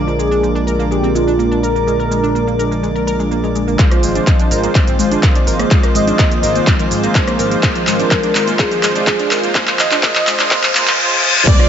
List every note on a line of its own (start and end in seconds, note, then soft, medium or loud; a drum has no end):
0.00 3.77 A#1 medium
0.00 3.75 D3 medium
0.00 3.75 F3 medium
0.00 0.64 G#3 medium
0.00 3.75 G#3 medium
0.00 3.75 A#3 medium
0.00 0.64 D4 medium
0.00 3.75 F4 medium
0.00 0.64 A#4 loud
0.00 3.80 D5 medium
0.00 3.78 D6 medium
0.08 0.17 F3 medium
0.08 shaker soft
0.19 0.29 G#3 medium
0.19 0.64 G#4 loud
0.19 shaker medium
0.31 0.38 D4 medium
0.31 shaker soft
0.43 0.50 F3 medium
0.43 shaker soft
0.56 0.65 D4 loud
0.56 shaker soft
0.67 1.12 G#3 medium
0.67 1.12 D4 medium
0.67 0.74 A#4 medium
0.67 1.12 A#4 medium
0.67 shaker medium
0.79 0.86 A#3 medium
0.79 shaker soft
0.91 0.95 G#3 medium
0.91 1.14 G4 loud
0.91 shaker soft
1.03 1.10 C4 loud
1.03 shaker soft
1.15 1.25 G#3 medium
1.15 1.84 G#3 medium
1.15 1.84 D4 medium
1.15 1.60 F4 loud
1.15 1.84 A#4 medium
1.15 shaker medium
1.27 1.34 D4 loud
1.27 shaker soft
1.39 1.49 A#3 medium
1.39 shaker soft
1.52 1.61 D4 medium
1.52 shaker soft
1.63 1.70 A#4 medium
1.63 3.27 A#4 loud
1.63 shaker medium
1.76 1.79 A#3 medium
1.76 shaker soft
1.87 2.56 G#3 medium
1.87 1.91 G#3 medium
1.87 2.56 D4 medium
1.87 2.56 A#4 loud
1.87 shaker soft
2.00 2.03 A#4 medium
2.00 shaker soft
2.11 2.21 G#3 medium
2.11 shaker medium
2.23 2.30 D4 medium
2.23 shaker soft
2.35 2.42 A#3 medium
2.35 shaker soft
2.48 2.57 A#3 medium
2.48 shaker soft
2.59 3.76 G#3 medium
2.59 3.76 D4 medium
2.59 3.76 A#4 medium
2.59 2.66 A#4 medium
2.59 shaker medium
2.72 2.78 A#3 medium
2.72 shaker soft
2.83 2.87 G#3 medium
2.83 shaker soft
2.96 2.99 A#4 medium
2.96 shaker soft
3.07 3.17 A#4 loud
3.07 shaker medium
3.19 3.26 G#3 medium
3.19 shaker soft
3.31 3.41 A#3 medium
3.31 shaker soft
3.44 3.47 G#3 medium
3.44 shaker soft
3.55 3.59 G#3 medium
3.55 shaker medium
3.68 3.74 A#3 medium
3.68 shaker soft
3.79 10.95 D#3 medium
3.79 10.95 F3 medium
3.79 10.95 G#3 medium
3.79 4.48 G#3 medium
3.79 3.86 A#3 loud
3.79 10.95 C4 medium
3.79 10.95 F4 medium
3.79 4.48 F4 medium
3.79 4.48 C5 loud
3.79 10.99 D#5 medium
3.79 10.99 D6 medium
3.79 kick loud
3.79 clap soft
3.79 closed hi-hat medium
3.79 riser medium
3.79 shaker soft
3.91 4.01 F3 medium
3.91 cross-stick medium
3.91 closed hi-hat soft
3.91 shaker soft
4.03 4.20 G#1 medium
4.03 4.13 G#3 medium
4.03 4.76 D#5 loud
4.03 open hi-hat loud
4.03 shaker medium
4.15 4.22 D4 loud
4.15 closed hi-hat soft
4.15 shaker soft
4.27 4.34 F3 medium
4.27 kick loud
4.27 clap soft
4.27 closed hi-hat medium
4.27 shaker soft
4.40 4.49 D4 loud
4.40 closed hi-hat soft
4.40 shaker soft
4.51 4.68 G#1 medium
4.51 4.96 G#3 medium
4.51 4.96 F4 medium
4.51 4.58 A#4 medium
4.51 4.96 C5 medium
4.51 open hi-hat loud
4.51 shaker medium
4.64 4.70 A#3 loud
4.64 closed hi-hat soft
4.64 shaker soft
4.75 4.79 G#3 medium
4.75 5.22 C5 loud
4.75 kick loud
4.75 clap soft
4.75 closed hi-hat medium
4.75 shaker soft
4.87 4.96 G#1 medium
4.87 4.94 C4 loud
4.87 closed hi-hat soft
4.87 shaker soft
4.99 5.16 G#1 medium
4.99 5.68 G#3 medium
4.99 5.09 G#3 medium
4.99 5.68 F4 medium
4.99 5.68 C5 medium
4.99 open hi-hat loud
4.99 shaker medium
5.11 5.18 D4 loud
5.11 closed hi-hat soft
5.11 shaker soft
5.23 5.33 A#3 medium
5.23 5.68 C5 medium
5.23 kick loud
5.23 clap medium
5.23 closed hi-hat medium
5.23 shaker soft
5.35 5.45 D4 loud
5.35 closed hi-hat soft
5.35 shaker soft
5.47 5.64 G#1 loud
5.47 5.54 A#4 medium
5.47 open hi-hat loud
5.47 shaker medium
5.59 5.63 A#3 medium
5.59 cross-stick medium
5.59 closed hi-hat soft
5.59 shaker soft
5.71 6.40 G#3 loud
5.71 5.75 G#3 medium
5.71 6.40 F4 medium
5.71 6.40 C5 loud
5.71 kick loud
5.71 clap medium
5.71 closed hi-hat medium
5.71 shaker soft
5.83 5.87 A#4 medium
5.83 cross-stick medium
5.83 closed hi-hat soft
5.83 shaker soft
5.95 6.12 G#1 medium
5.95 6.05 G#3 medium
5.95 6.69 D#5 loud
5.95 open hi-hat loud
5.95 shaker medium
6.07 6.14 D4 loud
6.07 closed hi-hat soft
6.07 shaker soft
6.19 6.26 A#3 medium
6.19 kick loud
6.19 clap medium
6.19 closed hi-hat medium
6.19 shaker soft
6.32 6.41 A#3 medium
6.32 closed hi-hat soft
6.32 shaker soft
6.43 6.60 G#1 medium
6.43 7.60 G#3 medium
6.43 7.60 F4 medium
6.43 6.50 A#4 medium
6.43 7.60 C5 loud
6.43 open hi-hat loud
6.43 shaker medium
6.56 6.62 A#3 medium
6.56 closed hi-hat soft
6.56 shaker soft
6.67 6.71 G#3 medium
6.67 7.15 C5 loud
6.67 kick loud
6.67 clap medium
6.67 closed hi-hat medium
6.67 shaker soft
6.79 6.88 G#1 loud
6.79 6.83 A#4 medium
6.79 closed hi-hat soft
6.79 shaker soft
6.91 7.08 G#1 medium
6.91 6.98 G#3 medium
6.91 open hi-hat loud
6.91 shaker medium
7.03 7.13 A#3 loud
7.03 closed hi-hat soft
7.03 shaker soft
7.15 7.22 D4 medium
7.15 7.60 C5 medium
7.15 kick loud
7.15 clap medium
7.15 closed hi-hat medium
7.15 shaker soft
7.27 7.37 A#3 loud
7.27 cross-stick medium
7.27 closed hi-hat soft
7.27 shaker soft
7.39 7.56 G#1 loud
7.39 7.46 A#4 medium
7.39 open hi-hat loud
7.39 shaker medium
7.51 7.58 A#3 medium
7.51 closed hi-hat soft
7.51 shaker soft
7.63 8.32 G#3 medium
7.63 7.70 A#3 medium
7.63 8.32 F4 medium
7.63 8.32 C5 loud
7.63 kick loud
7.63 clap medium
7.63 closed hi-hat medium
7.63 shaker soft
7.75 7.85 F3 medium
7.75 closed hi-hat soft
7.75 shaker soft
7.87 8.04 G#1 medium
7.87 7.97 G#3 medium
7.87 8.61 A#4 loud
7.87 clap medium
7.87 open hi-hat loud
7.87 shaker medium
7.99 8.06 D4 medium
7.99 closed hi-hat soft
7.99 shaker soft
8.11 8.18 F3 medium
8.11 kick loud
8.11 clap medium
8.11 closed hi-hat medium
8.11 shaker soft
8.23 8.33 D4 medium
8.23 closed hi-hat soft
8.23 shaker soft
8.35 8.52 G#1 medium
8.35 8.57 G#3 medium
8.35 8.57 F4 medium
8.35 8.42 A#4 medium
8.35 8.57 C5 medium
8.35 clap medium
8.35 open hi-hat loud
8.35 shaker medium
8.48 8.54 A#3 medium
8.48 closed hi-hat soft
8.48 shaker soft
8.59 9.28 G#3 loud
8.59 8.66 A#3 medium
8.59 9.28 F4 medium
8.59 9.07 G#4 loud
8.59 9.28 C5 loud
8.59 kick loud
8.59 clap medium
8.59 closed hi-hat medium
8.59 shaker soft
8.71 8.80 G#1 medium
8.71 8.81 F3 medium
8.71 closed hi-hat soft
8.71 shaker soft
8.83 9.00 G#1 medium
8.83 8.93 G#3 medium
8.83 clap medium
8.83 open hi-hat loud
8.83 shaker medium
8.95 9.02 D4 loud
8.95 closed hi-hat soft
8.95 shaker soft
9.07 9.14 F3 medium
9.07 9.52 G#4 medium
9.07 kick loud
9.07 clap medium
9.07 closed hi-hat medium
9.07 shaker soft
9.19 9.29 D4 loud
9.19 closed hi-hat soft
9.19 shaker soft
9.31 9.48 G#1 loud
9.31 9.53 G#3 medium
9.31 9.53 F4 medium
9.31 9.38 A#4 medium
9.31 9.53 C5 medium
9.31 clap medium
9.31 open hi-hat loud
9.31 shaker medium
9.43 9.49 A#3 medium
9.43 closed hi-hat soft
9.43 shaker soft
9.55 10.01 G#3 loud
9.55 9.62 A#3 loud
9.55 10.01 F4 medium
9.55 10.01 C5 loud
9.55 kick loud
9.55 clap medium
9.55 closed hi-hat medium
9.55 shaker soft
9.67 9.77 F3 medium
9.67 clap medium
9.67 closed hi-hat soft
9.67 shaker soft
9.79 9.96 G#1 medium
9.79 9.89 G#3 medium
9.79 10.53 D#5 loud
9.79 clap medium
9.79 open hi-hat loud
9.79 shaker medium
9.91 9.98 D4 loud
9.91 clap medium
9.91 closed hi-hat soft
9.91 shaker soft
10.03 10.49 G#3 loud
10.03 10.10 A#3 loud
10.03 10.49 F4 medium
10.03 10.49 C5 loud
10.03 kick loud
10.03 clap loud
10.03 closed hi-hat medium
10.03 shaker soft
10.15 10.25 F3 medium
10.15 clap medium
10.15 closed hi-hat soft
10.15 shaker soft
10.27 10.44 G#1 medium
10.27 10.37 G#3 medium
10.27 clap loud
10.27 open hi-hat loud
10.27 shaker medium
10.39 10.46 D4 loud
10.39 clap medium
10.39 closed hi-hat soft
10.39 shaker soft
10.51 10.73 G#3 loud
10.51 10.58 A#3 loud
10.51 10.73 F4 medium
10.51 10.73 C5 loud
10.51 10.99 C5 loud
10.51 kick loud
10.51 clap loud
10.51 closed hi-hat medium
10.51 reverse cymbal medium
10.51 shaker soft
10.63 10.72 G#1 medium
10.63 10.73 F3 medium
10.63 clap medium
10.63 closed hi-hat soft
10.63 shaker soft
10.75 10.92 G#1 medium
10.75 10.97 G#3 loud
10.75 10.82 A#3 loud
10.75 10.97 F4 loud
10.75 10.97 C5 loud
10.75 clap loud
10.75 open hi-hat loud
10.75 shaker medium
10.88 10.97 F3 medium
10.88 clap medium
10.88 closed hi-hat soft
10.88 shaker soft
10.99 11.21 G#3 loud
10.99 11.21 F4 loud
10.99 11.21 C5 loud
11.23 11.45 G#3 loud
11.23 11.45 F4 loud
11.23 11.45 C5 loud
11.36 mid tom medium
11.47 11.69 D#3 medium
11.47 11.69 F3 medium
11.47 11.69 G#3 loud
11.47 11.69 G#3 medium
11.47 11.54 A#3 loud
11.47 11.69 C4 medium
11.47 11.69 F4 medium
11.47 11.69 C5 loud
11.47 11.69 D5 loud
11.47 kick loud
11.47 closed hi-hat medium
11.47 crash loud
11.47 impact medium
11.47 shaker soft
11.60 11.69 F4 loud
11.60 cross-stick medium
11.60 shaker soft